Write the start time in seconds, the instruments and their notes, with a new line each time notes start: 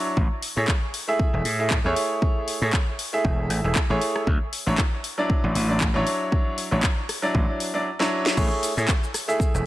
Already playing: grand piano F#3 D4 E4 C#5
0.17 slap bass A1, kick
0.42 open hi-hat
0.56 slap bass A2, grand piano A3 E4 G#4 C#5
0.68 kick, clap
0.94 open hi-hat
1.08 grand piano A3 E4 G#4 E5
1.19 muted slap bass stroke, kick
1.33 slap bass E1
1.45 slap bass A2, open hi-hat
1.59 grand piano A3 E4 G#4 E5
1.70 kick, clap
1.84 slap bass E2, grand piano A3 E4 G#4 C#5
1.96 open hi-hat
2.22 kick
2.48 open hi-hat
2.61 slap bass A2, grand piano A3 E4 G#4 C#5
2.73 kick, clap
2.99 open hi-hat
3.13 grand piano A3 E4 G#4 E5
3.24 slap bass E1, kick
3.50 slap bass A1, open hi-hat
3.64 slap bass E1, grand piano A3 E4 G#4 E5
3.75 kick, clap
3.90 slap bass A1, grand piano A3 E4 G#4 C#5
4.01 open hi-hat
4.16 cross-stick
4.27 slap bass D2, kick
4.53 open hi-hat
4.67 slap bass A1, grand piano F#3 D4 E4 C#5
4.78 kick, clap
5.04 open hi-hat
5.18 grand piano F#3 D4 E4 D5
5.30 muted slap bass stroke, kick
5.44 slap bass A1
5.55 slap bass A1, open hi-hat
5.69 grand piano F#3 D4 E4 D5
5.81 kick, clap
5.94 slap bass A1, grand piano F#3 D4 E4 C#5
6.07 open hi-hat
6.32 kick
6.58 open hi-hat
6.71 slap bass A1, grand piano F#3 D4 E4 C#5
6.83 kick, clap
7.09 cross-stick, open hi-hat
7.22 grand piano F#3 D4 E4 D5
7.35 slap bass A1, kick
7.60 open hi-hat
7.74 grand piano F#3 D4 E4 D5
8.00 grand piano F#3 D4 E4 C#5, snare
8.26 snare
8.37 slap bass A1, grand piano A3 E4 G#4 C#5, kick, crash, shaker
8.63 open hi-hat, shaker
8.77 slap bass A2, grand piano A3 E4 G#4 C#5, shaker
8.88 kick, clap, shaker
9.04 shaker
9.14 cross-stick, open hi-hat, shaker
9.28 grand piano A3 E4 G#4 E5, shaker
9.40 muted slap bass stroke, kick, shaker
9.54 slap bass E1, shaker